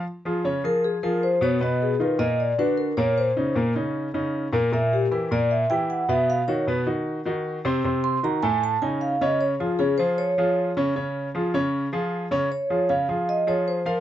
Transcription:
<<
  \new Staff \with { instrumentName = "Vibraphone" } { \time 4/4 \key des \major \tempo 4 = 154 r4. bes'8 aes'8 bes'8 c''8 des''8 | ees''8 aes'8 ces''8 ees''8 d''8 ces''8 bes'8 des''8 | c''4 r2. | e''8 g'8 bes'8 d''8 e''8 g''8 fis''8 e''8 |
f''8 des''8 r2. | r8 c'''8 bes''8 aes''8 a''8 gis''8 f''8 dis''8 | des''8 f'8 aes'8 c''8 des''4. r8 | r1 |
des''4 f''4 ees''8 des''8 c''8 bes'8 | }
  \new Staff \with { instrumentName = "Grand piano" } { \time 4/4 \key des \major r8 <f f' aes'>8 <des des' des''>8 <f f' aes'>4 <f f' aes'>4 <ces ces' ces''>8 | <ces ces' ces''>4 <ees ees' f'>8 <bes, bes bes'>4 <d d' fis'>4 <bes, bes bes'>8~ | <bes, bes bes'>8 <des des' ees'>8 <bes, bes bes'>8 <des des' ees'>4 <des des' ees'>4 <bes, bes bes'>8 | <bes, bes bes'>4 <e e' g'>8 <bes, bes bes'>4 <e e' g'>4 <ces ces' ces''>8~ |
<ces ces' ces''>8 <dis dis' fis'>8 <b, b b'>8 <dis dis' fis'>4 <dis dis' fis'>4 <c c' c''>8 | <c c' c''>4 <ees ees' ges'>8 <a, a a'>4 <cis cis' dis'>4 <cis cis' cis''>8~ | <cis cis' cis''>8 <f f' aes'>8 <des des' des''>8 <f f' aes'>4 <f f' aes'>4 <des des' des''>8 | <des des' des''>4 <f f' aes'>8 <des des' des''>4 <f f' aes'>4 <des des' des''>8 |
r8 <f f' aes'>8 <des des' des''>8 <f f' aes'>4 <f f' aes'>4 <f f' f''>8 | }
>>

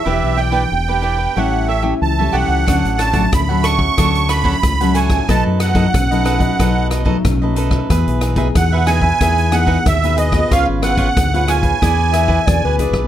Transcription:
<<
  \new Staff \with { instrumentName = "Accordion" } { \time 4/4 \key e \mixolydian \tempo 4 = 92 e''8 g''4. fis''8 e''8 a''8 fis''8~ | fis''8 a''8 b''8 cis'''4 b''4 gis''8 | a''8 fis''2 r4. | r4 fis''8 gis''4 fis''8 e''8 dis''8 |
eis''8 fis''4 gis''2 r8 | }
  \new Staff \with { instrumentName = "Clarinet" } { \time 4/4 \key e \mixolydian r1 | r1 | r1 | r1 |
r2 r8 e''8 d''16 b'8. | }
  \new Staff \with { instrumentName = "Cavaquinho" } { \time 4/4 \key e \mixolydian <e' g' b' d''>8 <e' g' b' d''>16 <e' g' b' d''>16 r16 <g' b' d''>16 <e' g' b' d''>16 <g' b' d''>16 <g' a' cis'' e''>8 <g' a' cis'' e''>16 <g' a' cis'' e''>16 r16 <a' cis'' e''>16 <g' a' cis'' e''>8 | <d' a' cis'' fis''>8 <d' a' cis'' fis''>16 <d' a' cis'' fis''>16 r16 <a' cis'' fis''>16 <d' a' cis'' fis''>16 <a' cis'' fis''>16 <d' a' cis'' fis''>8 <d' a' cis'' fis''>16 <d' a' cis'' fis''>16 r16 <a' cis'' fis''>16 <d' a' cis'' fis''>8 | <dis' a' b' dis''>8 <dis' a' b' dis''>16 <dis' a' b' dis''>16 r16 <a' b' dis''>16 <dis' a' b' dis''>16 <a' b' dis''>16 <dis' a' b' dis''>8 <dis' a' b' dis''>16 <dis' a' b' dis''>16 r16 <a' b' dis''>16 <dis' a' b' dis''>8 | <gis' b' e''>8 <dis' gis' b' e''>16 <dis' gis' b' e''>16 r16 <gis' b' e''>16 <dis' gis' b' e''>16 <gis' b' e''>16 <gis' b' e''>8 <dis' gis' b' e''>16 <dis' gis' b' e''>16 r16 <gis' b' e''>16 <gis' b'>8 |
<eis' b' cis'' eis''>8 <eis' b' cis'' eis''>16 <eis' b' cis'' eis''>16 r16 <b' cis'' eis''>16 <eis' b' cis'' eis''>16 <b' cis'' eis''>16 <e' gis' b' d''>8 <e' gis' b' d''>16 <e' gis' b' d''>16 r16 <gis' b' d''>16 <e' gis' b' d''>8 | }
  \new Staff \with { instrumentName = "Nylon-string guitar" } { \time 4/4 \key e \mixolydian << { <d' g' b'>8 r16 <d' g' b'>8 <d' g' b'>8. <g cis' e'>8 r16 <g cis' e'>8 <g cis' e'>8. | <fis a cis'>8. <fis a cis'>8 <fis a cis'>8. <fis a cis'>8. <fis a cis'>8 <fis a cis'>8. | <fis a dis'>8. <fis a dis'>8 <fis a dis'>8. <fis a dis'>8. <fis a dis'>8 <fis a dis'>8. | <b gis'>8 r16 <b dis' gis'>8. <b dis' gis'>16 r16 <b dis' gis'>8 <b dis' gis'>8. <b dis' gis'>8 <b eis' gis'>16~ |
<b eis' gis'>8 <b gis'>8. <b eis' gis'>16 <b eis' gis'>8 <b d' gis'>4 <b d' gis'>8 <b d' gis'>16 r16 | } \\ { e4 b,4 a,4 e4 | d4 a,4 d4 a,4 | b,4 fis,4 b,4 fis,4 | e4 b,4 e4 b,4 |
cis4 gis,4 e4 b,4 | } >> }
  \new Staff \with { instrumentName = "Fingered electric bass" } { \clef bass \time 4/4 \key e \mixolydian e,,16 b,,8. e,,4 a,,4 cis,8 b,,16 cis,16 | d,16 a,,8. d,4 d,4 cis,4 | b,,16 fis,8. b,,4 b,,4 b,,4 | e,16 b,,8. e,4 e,4 dis,4 |
cis,16 gis,,8. d,4 e,4 e,16 d,16 cis,16 b,,16 | }
  \new DrumStaff \with { instrumentName = "Drums" } \drummode { \time 4/4 r4 r4 r4 r4 | <hh bd ss>16 hh16 <hh ss>16 <hh bd>16 <hh bd ss>8 <hh ss>16 bd16 <hh bd ss>16 hh16 <hh ss>16 bd16 <hh bd ss>16 hh16 hh16 <hh bd ss>16 | <hh bd ss>8 <hh ss>16 <hh bd>16 <hh bd ss>16 hh16 <hh ss>16 <hh bd>16 <hh bd ss>8 <hh ss>16 bd16 <hh bd ss>8 hh16 <bd ss>16 | <hh bd ss>16 hh16 <hh ss>16 <hh bd>16 <hh bd ss>8 <hh ss>16 bd16 <hh bd ss>16 hh16 <hh ss>16 bd16 <hh bd ss>16 hh16 hh16 <hh bd ss>16 |
<hh bd ss>8 <hh ss>16 <hh bd>16 <hh bd ss>16 hh16 <hh ss>16 <hh bd>16 <hh bd ss>8 <hh ss>16 bd16 <hh bd ss>8 hh16 <bd ss>16 | }
>>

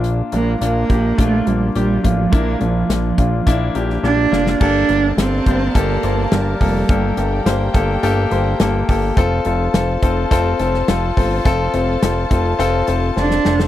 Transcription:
<<
  \new Staff \with { instrumentName = "String section" } { \time 4/4 \key g \dorian \tempo 4 = 105 << { r1 | r1 | a''1 | g''1 |
a''1~ | a''1 | } \\ { r1 | r1 | <g' bes' d''>1~ | <g' bes' d''>1 |
<f' a' c''>1~ | <f' a' c''>1 | } >> }
  \new Staff \with { instrumentName = "Grand piano" } { \time 4/4 \key g \dorian <bes d' f'>8 <bes d' f'>8 <bes d' f'>8 <bes d' g'>8 <bes d' f'>8 <bes d' f'>8 <bes d' g'>8 <bes d' f'>8 | <bes d' e'>8 <bes d' f'>8 <bes d' f'>8 <bes d' f'>8 <bes d' e'>8 <bes d' g'>8 <bes d' g'>8 <bes d' f'>8 | <bes g' a'>8 <bes g'>8 <bes g' a'>8 <bes g' c''>8 <bes g' a'>8 <bes g' c''>8 <bes g' bes'>8 <bes g' a'>8 | <bes g' a'>8 <bes g' a'>8 <bes g' c''>8 <bes g' a'>8 <bes g' a'>8 <bes g' c''>8 <bes g' a'>8 <bes g' a'>8 |
<c' f' a'>8 <c' f' a'>8 <c' f' a'>8 <c' f' a'>8 <c' f' a'>8 <c' f' a'>8 <c' f' a'>8 <c' f' a'>8 | <c' f' a'>8 <c' f' a'>8 <c' f' a'>8 <c' f' a'>8 <c' f' a'>8 <c' f' a'>8 <c' f' a'>8 <c' f' a'>8 | }
  \new Staff \with { instrumentName = "Grand piano" } { \clef bass \time 4/4 \key g \dorian bes,4 r2 r8 bes,8~ | bes,4 r2. | g,4. r2 r8 | g,4. r2 r8 |
r1 | r1 | }
  \new Staff \with { instrumentName = "Cello" } { \time 4/4 \key g \dorian r8 bes8 bes4 a8 g8 g8 f8 | bes8 f2 r8 d'4 | d'4 c'4 bes4 g8 g8~ | g8 r2. r8 |
r1 | r2. d'4 | }
  \new Staff \with { instrumentName = "Analog synth bass" } { \clef bass \time 4/4 \key g \dorian bes,,8 bes,,8 bes,,8 bes,,8 bes,,8 bes,,8 bes,,8 a,,8 | bes,,8 bes,,8 bes,,8 bes,,8 bes,,8 bes,,8 bes,,8 f,,8 | g,,8 g,,8 g,,8 g,,8 g,,8 g,,8 g,,8 f,,8 | g,,8 g,,8 g,,8 g,,8 g,,8 g,,8 g,,8 g,,8 |
f,,8 f,,8 f,,8 f,,8 f,,8 f,,8 f,,8 g,,8 | f,,8 f,,8 f,,8 f,,8 f,,8 f,,8 f,,8 f,,8 | }
  \new DrumStaff \with { instrumentName = "Drums" } \drummode { \time 4/4 hh8 hh8 hh8 <hh bd>8 <hh bd>8 hh8 hh8 <hh bd>8 | <hh bd>8 hh8 <hh sn>8 <hh bd>8 <hh bd>8 hh16 sn16 sn8 sn16 sn16 | <cymc bd>8 hh8 <hh sn>8 <hh bd>8 <hh bd>8 hh8 <hh sn>8 <hho bd>8 | <hh bd>8 hh8 <hh sn>8 <hh bd>8 hh8 hh8 <hh sn>8 <hho bd>8 |
<hh bd>8 hh8 <hh sn>8 <hh bd>8 <hh bd>8 hh16 sn16 <hh sn>8 <hho bd>8 | <hh bd>8 hh8 <hh sn>8 <hh bd>8 hh8 hh8 sn16 sn16 sn16 sn16 | }
>>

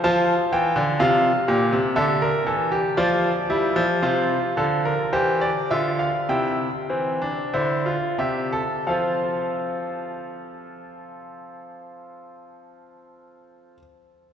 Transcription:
<<
  \new Staff \with { instrumentName = "Grand piano" } { \time 4/4 \key f \major \tempo 4 = 50 << { a''8 g''8 f''4 e''4 d''4 | c''8 a'16 bes'16 c''16 d''16 e''16 f''16 g''4 c''8 e''8 | <c' f' f''>1 | } \\ { f'4 f'8 g'8 a'16 bes'16 a'16 g'16 f'8 e'8 | f'4 g'8 f'8 e'8 c'16 d'16 e'16 f'16 g'16 a'16 | a'1 | } >> }
  \new Staff \with { instrumentName = "Grand piano" } { \clef bass \time 4/4 \key f \major f8 e16 d16 c8 bes,16 c16 d8 e8 f8 g16 f16 | c8 d8 e8 d8 c8 e8 d8 c8 | f1 | }
>>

